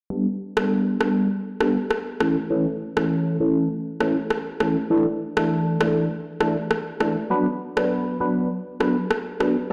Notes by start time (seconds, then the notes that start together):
0.10 G3 B3 D4 A4
0.57 G3 B3 D4 A4, cross-stick
1.00 G3 B3 D4 A4, cross-stick
1.60 G3 B3 D4 A4, cross-stick
1.91 cross-stick
2.20 E3 A3 C#4 A4, cross-stick
2.50 E3 A3 C#4 A4
2.97 E3 A3 C#4 A4, cross-stick
3.40 E3 A3 C#4 A4
4.00 E3 A3 C#4 A4, cross-stick
4.30 cross-stick
4.60 E3 A3 C#4 A4, cross-stick
4.90 E3 A3 D4 A4
5.37 E3 A3 D4 A4, cross-stick
5.80 E3 A3 D4 A4, cross-stick
6.40 E3 A3 D4 A4, cross-stick
6.71 cross-stick
7.00 E3 A3 D4 A4, cross-stick
7.30 F#3 B3 D4 B4
7.77 F#3 B3 D4 B4, cross-stick
8.20 F#3 B3 D4 B4
8.80 F#3 B3 D4 B4, cross-stick
9.11 cross-stick
9.40 F#3 B3 D4 B4, cross-stick